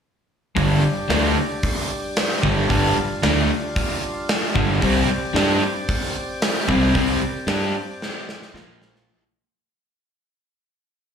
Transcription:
0.55 0.81 G1 medium
0.55 0.82 G2 medium
0.55 0.83 D3 medium
0.55 0.83 G3 medium
0.55 4.79 G3 medium
0.55 4.79 D4 medium
0.55 2.68 G4 medium
0.55 kick loud
0.55 open hi-hat medium
0.82 muted fingered electric bass stroke soft
0.82 muted overdriven electric guitar stroke medium
1.08 1.35 D2 medium
1.08 1.35 D3 medium
1.08 1.36 A3 loud
1.08 1.36 D4 medium
1.08 snare loud
1.08 open hi-hat medium
1.63 kick loud
1.63 open hi-hat medium
2.16 snare loud
2.16 open hi-hat medium
2.43 2.68 G1 medium
2.43 2.67 G2 medium
2.43 2.69 D3 medium
2.43 2.69 G3 medium
2.43 kick medium
2.69 2.95 G1 loud
2.69 2.95 G2 medium
2.69 2.96 D3 medium
2.69 2.96 G3 loud
2.69 4.81 F4 medium
2.69 kick loud
2.69 open hi-hat medium
2.96 muted overdriven electric guitar stroke medium
2.96 muted fingered electric bass stroke soft
3.23 3.48 D2 medium
3.23 3.49 D3 medium
3.23 3.49 A3 medium
3.23 3.50 D4 loud
3.23 snare loud
3.23 open hi-hat medium
3.76 kick loud
3.76 open hi-hat medium
4.29 snare loud
4.29 open hi-hat medium
4.54 4.81 G1 loud
4.54 4.81 G2 medium
4.54 4.81 D3 loud
4.54 4.81 G3 loud
4.54 kick loud
4.82 5.07 C2 medium
4.82 5.08 C3 medium
4.82 5.08 G3 loud
4.82 8.51 C4 medium
4.82 5.09 C4 loud
4.82 8.51 G4 medium
4.82 8.51 D5 medium
4.82 kick loud
4.82 open hi-hat medium
5.09 muted overdriven electric guitar stroke medium
5.34 5.60 G2 loud
5.34 5.60 G3 medium
5.34 5.61 D4 loud
5.34 5.61 G4 loud
5.34 snare loud
5.34 open hi-hat medium
5.89 kick loud
5.89 open hi-hat medium
6.42 snare loud
6.42 open hi-hat medium
6.68 6.93 C2 medium
6.68 6.93 C3 medium
6.68 6.94 G3 medium
6.68 6.95 C4 loud
6.68 kick loud
6.94 7.20 C2 loud
6.94 7.20 C3 medium
6.94 7.21 G3 medium
6.94 7.21 C4 medium
6.94 kick loud
6.94 open hi-hat medium
7.22 muted overdriven electric guitar stroke medium
7.47 7.72 G2 medium
7.47 7.74 G3 medium
7.47 7.74 D4 loud
7.47 7.75 G4 medium
7.47 snare loud
7.47 open hi-hat medium
8.02 snare medium
8.29 snare medium
8.42 snare medium
8.53 9.04 A#1 medium
8.53 9.07 A#2 medium
8.53 9.07 F3 loud
8.53 9.07 A#3 medium
8.53 9.08 A#3 medium
8.53 9.07 F4 medium
8.53 9.07 C5 medium
8.53 snare medium
8.82 snare medium
8.96 snare medium

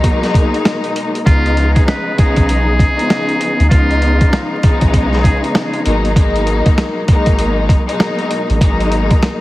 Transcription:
0.00 1.17 B2 loud
0.00 1.17 F#3 loud
0.00 1.18 G#3 medium
0.00 1.18 A#3 loud
0.00 1.18 D#4 loud
0.00 kick medium
0.04 closed hi-hat medium
0.23 snare soft
0.23 closed hi-hat soft
0.34 kick medium
0.34 closed hi-hat medium
0.54 closed hi-hat soft
0.65 snare loud
0.65 closed hi-hat medium
0.84 closed hi-hat soft
0.96 closed hi-hat medium
1.15 closed hi-hat soft
1.26 1.77 C#2 loud
1.26 2.12 C#3 medium
1.26 2.12 F3 medium
1.26 2.13 G#3 medium
1.26 2.13 B3 medium
1.26 2.13 D#4 loud
1.26 1.73 F4 loud
1.26 kick loud
1.26 closed hi-hat medium
1.46 closed hi-hat soft
1.57 closed hi-hat medium
1.73 1.85 G#4 medium
1.73 kick medium
1.73 closed hi-hat medium
1.87 2.15 B4 medium
1.87 snare loud
1.87 snare medium
1.87 closed hi-hat medium
2.17 2.90 C#3 loud
2.17 2.90 F3 medium
2.17 2.90 G#3 medium
2.17 2.91 B3 medium
2.17 2.91 D#4 loud
2.17 3.68 G#4 loud
2.17 kick loud
2.17 closed hi-hat medium
2.36 2.87 B1 medium
2.36 kick medium
2.36 closed hi-hat medium
2.49 closed hi-hat medium
2.79 kick medium
2.79 closed hi-hat medium
2.96 3.65 C#3 loud
2.96 3.66 F3 medium
2.96 3.66 G#3 medium
2.96 3.66 B3 medium
2.96 3.66 D#4 loud
2.96 closed hi-hat soft
3.10 snare loud
3.10 closed hi-hat medium
3.29 closed hi-hat soft
3.41 closed hi-hat medium
3.60 3.69 D2 medium
3.60 closed hi-hat soft
3.69 4.22 C#2 loud
3.69 4.57 C#3 loud
3.69 4.57 F3 loud
3.69 4.57 G#3 medium
3.69 4.57 B3 medium
3.69 4.58 D#4 loud
3.69 4.46 F4 loud
3.69 kick loud
3.69 closed hi-hat medium
3.91 closed hi-hat soft
4.02 closed hi-hat medium
4.21 kick medium
4.21 closed hi-hat medium
4.33 snare loud
4.33 snare medium
4.33 closed hi-hat medium
4.62 5.85 C#3 loud
4.62 5.85 F3 medium
4.62 5.85 G#3 loud
4.62 5.86 B3 loud
4.62 5.86 D#4 loud
4.62 kick loud
4.62 closed hi-hat medium
4.81 5.32 B1 medium
4.81 kick medium
4.81 closed hi-hat medium
4.94 kick medium
4.94 closed hi-hat medium
5.13 snare soft
5.23 5.40 G#4 medium
5.23 kick medium
5.23 closed hi-hat medium
5.44 closed hi-hat soft
5.55 snare loud
5.55 closed hi-hat medium
5.74 closed hi-hat soft
5.85 6.61 G#1 loud
5.85 6.14 B2 loud
5.85 6.14 F#3 medium
5.85 6.15 G#3 medium
5.85 6.15 A#3 medium
5.85 6.15 D#4 loud
5.85 closed hi-hat medium
6.05 closed hi-hat medium
6.16 7.02 B2 loud
6.16 7.03 F#3 medium
6.16 7.03 G#3 medium
6.16 7.03 A#3 loud
6.16 7.03 D#4 loud
6.16 kick loud
6.16 closed hi-hat medium
6.36 closed hi-hat soft
6.47 closed hi-hat medium
6.66 kick loud
6.66 closed hi-hat medium
6.78 snare loud
6.78 snare medium
6.78 closed hi-hat medium
7.08 7.81 B2 loud
7.08 7.81 F#3 medium
7.08 7.81 G#3 medium
7.08 7.81 A#3 loud
7.08 7.82 D#4 loud
7.08 kick loud
7.08 closed hi-hat medium
7.26 7.77 G#1 loud
7.26 kick medium
7.26 closed hi-hat medium
7.39 closed hi-hat medium
7.69 kick medium
7.69 closed hi-hat medium
7.87 8.56 B2 loud
7.87 8.56 F#3 medium
7.87 8.56 G#3 medium
7.87 8.56 A#3 medium
7.87 8.57 D#4 loud
7.87 closed hi-hat medium
8.00 snare loud
8.00 closed hi-hat medium
8.19 closed hi-hat soft
8.31 closed hi-hat medium
8.50 8.59 A1 loud
8.50 closed hi-hat soft
8.61 9.41 B2 loud
8.61 9.41 F#3 loud
8.61 9.41 G#3 medium
8.61 9.41 A#3 loud
8.61 9.41 D#4 loud
8.61 kick loud
8.61 closed hi-hat medium
8.80 closed hi-hat soft
8.92 closed hi-hat medium
9.11 kick medium
9.11 closed hi-hat medium
9.23 snare loud
9.23 snare medium
9.23 closed hi-hat medium

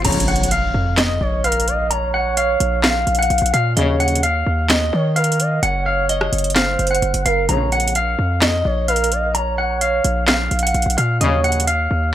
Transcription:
0.05 0.72 A#1 loud
0.05 0.49 A#1 loud
0.05 0.49 F2 loud
0.05 0.49 C#3 loud
0.05 0.48 C#5 loud
0.05 0.24 A#5 medium
0.05 closed hi-hat medium
0.05 crash loud
0.05 impact medium
0.12 closed hi-hat medium
0.20 closed hi-hat medium
0.28 0.47 F#5 medium
0.28 closed hi-hat soft
0.36 closed hi-hat medium
0.43 closed hi-hat medium
0.51 0.95 F5 medium
0.51 closed hi-hat medium
0.74 1.19 F2 loud
0.97 1.20 D#5 loud
0.97 1.41 D#5 medium
0.97 snare loud
0.97 clap medium
0.97 closed hi-hat medium
1.21 2.56 A#1 loud
1.21 1.43 C#5 medium
1.44 1.66 A#4 loud
1.44 1.88 F5 medium
1.44 closed hi-hat medium
1.52 closed hi-hat medium
1.60 closed hi-hat medium
1.68 1.90 D#5 medium
1.68 closed hi-hat medium
1.91 2.80 C#5 loud
1.91 2.10 A#5 medium
1.91 closed hi-hat medium
2.14 2.33 F#5 medium
2.37 2.81 F5 medium
2.37 closed hi-hat medium
2.60 3.05 A#1 loud
2.60 closed hi-hat medium
2.83 3.16 F5 medium
2.83 3.73 F5 loud
2.83 snare loud
2.83 clap medium
2.83 closed hi-hat medium
3.07 3.29 A#1 loud
3.07 closed hi-hat medium
3.15 closed hi-hat medium
3.19 3.51 F#5 medium
3.19 closed hi-hat medium
3.30 3.41 A#1 loud
3.30 closed hi-hat soft
3.38 3.53 A#1 loud
3.38 closed hi-hat medium
3.46 closed hi-hat medium
3.53 3.76 A#2 loud
3.53 3.72 F5 medium
3.53 closed hi-hat medium
3.77 4.21 A#1 loud
3.77 4.44 D#2 loud
3.77 4.21 F#2 loud
3.77 4.21 C#3 loud
3.77 4.20 C#5 loud
3.77 3.96 D#5 medium
3.77 closed hi-hat medium
4.00 4.19 F#5 medium
4.00 closed hi-hat soft
4.08 closed hi-hat medium
4.15 closed hi-hat medium
4.23 4.67 F5 medium
4.23 closed hi-hat medium
4.46 4.91 D#2 loud
4.69 5.13 D#5 medium
4.69 4.92 D#5 medium
4.69 snare loud
4.69 clap medium
4.69 closed hi-hat medium
4.93 5.60 D#3 loud
4.93 5.15 C#5 medium
5.16 5.38 A#4 medium
5.16 5.60 F5 medium
5.16 closed hi-hat medium
5.24 closed hi-hat medium
5.32 closed hi-hat medium
5.40 5.62 D#5 medium
5.40 closed hi-hat medium
5.63 6.30 F#1 loud
5.63 6.52 C#5 loud
5.63 5.82 F#5 medium
5.63 closed hi-hat medium
5.86 6.05 F5 medium
6.09 6.53 D#5 medium
6.09 closed hi-hat medium
6.21 cross-stick loud
6.32 6.77 F#1 loud
6.32 closed hi-hat medium
6.38 closed hi-hat medium
6.44 closed hi-hat medium
6.50 closed hi-hat medium
6.55 7.22 C5 medium
6.55 6.89 F5 loud
6.55 snare loud
6.55 clap medium
6.55 closed hi-hat medium
6.79 7.01 F#1 loud
6.79 closed hi-hat medium
6.87 7.23 F#5 medium
6.87 closed hi-hat medium
6.95 closed hi-hat medium
7.02 7.13 F#1 loud
7.02 closed hi-hat soft
7.14 7.25 F#1 loud
7.14 closed hi-hat medium
7.26 7.48 F#1 loud
7.26 7.48 A#4 medium
7.26 7.45 F5 medium
7.26 closed hi-hat medium
7.49 7.93 A#1 loud
7.49 8.16 A#1 loud
7.49 7.93 F2 loud
7.49 7.93 C#3 loud
7.49 7.93 C#5 loud
7.49 7.68 A#5 medium
7.49 closed hi-hat medium
7.72 7.91 F#5 medium
7.72 closed hi-hat soft
7.80 closed hi-hat medium
7.88 closed hi-hat medium
7.95 8.39 F5 medium
7.95 closed hi-hat medium
8.19 8.63 F2 loud
8.41 8.64 D#5 loud
8.41 8.86 D#5 loud
8.41 snare loud
8.41 clap medium
8.41 closed hi-hat medium
8.65 10.01 A#1 loud
8.65 8.87 C#5 medium
8.88 9.10 A#4 loud
8.88 9.32 F5 medium
8.88 closed hi-hat medium
8.96 closed hi-hat medium
9.04 closed hi-hat medium
9.12 9.34 D#5 medium
9.12 closed hi-hat medium
9.35 10.24 C#5 loud
9.35 9.54 A#5 medium
9.35 closed hi-hat medium
9.58 9.77 F#5 medium
9.81 10.25 F5 medium
9.81 closed hi-hat medium
10.04 10.49 A#1 loud
10.04 closed hi-hat medium
10.27 10.61 F5 loud
10.27 11.17 F5 medium
10.27 snare loud
10.27 clap medium
10.27 closed hi-hat medium
10.51 10.73 A#1 loud
10.51 closed hi-hat soft
10.59 10.96 F#5 medium
10.59 closed hi-hat medium
10.67 closed hi-hat medium
10.74 10.86 A#1 loud
10.74 closed hi-hat soft
10.82 10.97 A#1 loud
10.82 closed hi-hat medium
10.90 closed hi-hat medium
10.98 11.20 A#2 loud
10.98 11.17 F5 medium
10.98 closed hi-hat medium
11.21 11.65 A#1 loud
11.21 11.88 D#2 loud
11.21 11.65 F#2 loud
11.21 11.65 C#3 loud
11.21 11.65 C#5 loud
11.21 11.40 D#5 medium
11.21 closed hi-hat medium
11.44 11.63 F#5 medium
11.44 closed hi-hat soft
11.52 closed hi-hat medium
11.60 closed hi-hat medium
11.67 12.11 F5 medium
11.67 closed hi-hat medium
11.91 12.14 D#2 loud

